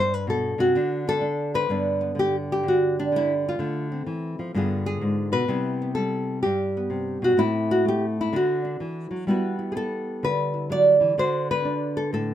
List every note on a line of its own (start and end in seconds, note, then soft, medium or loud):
0.00 0.73 G2 medium
0.00 0.14 C5 loud
0.14 0.28 B4 loud
0.27 0.58 B2 medium
0.27 0.60 A4 medium
0.58 0.74 C3 medium
0.58 1.22 F#4 loud
0.75 1.68 D3 medium
0.75 1.06 D4 soft
1.07 1.20 D4 soft
1.07 1.54 A4 loud
1.21 1.67 D4 medium
1.54 2.17 B4 loud
1.54 1.68 C5 medium
1.69 3.57 G2 medium
1.69 2.14 D3 soft
1.69 2.00 B3 soft
1.69 2.68 D4 soft
2.01 3.57 B3 soft
2.15 2.62 D3 medium
2.19 2.35 G4 loud
2.52 3.13 G4 medium
2.63 3.11 D3 medium
2.68 2.97 F#4 medium
2.99 3.45 D4 medium
3.12 3.58 D3 medium
3.16 3.32 E4 loud
3.49 3.91 F4 medium
3.59 4.06 D3 medium
3.59 4.52 A3 soft
3.92 4.52 C4 soft
4.06 4.38 E3 medium
4.39 4.54 F3 medium
4.54 5.01 G2 medium
4.54 5.48 D3 soft
4.54 5.49 B3 soft
4.54 5.48 F4 medium
4.54 4.85 G#4 medium
4.86 5.32 G#4 loud
5.01 5.33 G#2 medium
5.32 5.48 B2 medium
5.32 5.94 B4 medium
5.48 6.43 C3 medium
5.48 5.95 G3 soft
5.48 5.80 B3 soft
5.48 7.24 E4 medium
5.82 6.76 B3 soft
5.95 7.36 G3 medium
5.95 6.42 A4 medium
6.43 7.37 G2 medium
6.43 7.38 G4 medium
6.77 7.37 B3 soft
6.90 7.22 C3 medium
7.22 7.36 B2 medium
7.22 7.39 F#4 medium
7.37 8.32 A2 medium
7.37 7.85 A3 soft
7.37 8.31 C4 soft
7.37 8.17 E4 medium
7.71 7.86 F#4 loud
7.85 8.32 A3 medium
7.85 8.04 G4 loud
8.21 8.35 E4 medium
8.33 8.80 D3 medium
8.33 8.64 D4 medium
8.33 9.28 F#4 medium
8.65 9.28 D4 soft
8.80 9.10 E3 medium
9.11 9.27 F#3 medium
9.27 11.15 G3 medium
9.27 9.75 B3 soft
9.27 9.58 E4 soft
9.27 9.71 F#4 medium
9.27 10.24 B4 soft
9.59 10.53 E4 soft
9.72 10.69 B3 medium
9.72 9.76 G#4 medium
9.77 10.71 A4 medium
10.23 11.16 D3 medium
10.23 10.71 B4 loud
10.54 11.15 E4 soft
10.70 11.00 F#3 medium
10.70 11.18 D5 loud
11.00 11.17 E3 medium
11.18 12.34 D3 medium
11.18 11.64 D4 soft
11.18 11.96 F#4 soft
11.18 11.50 C5 loud
11.51 12.34 B4 loud
11.65 12.34 D4 medium
11.97 12.12 A4 medium
12.13 12.34 A2 medium
12.13 12.34 A4 medium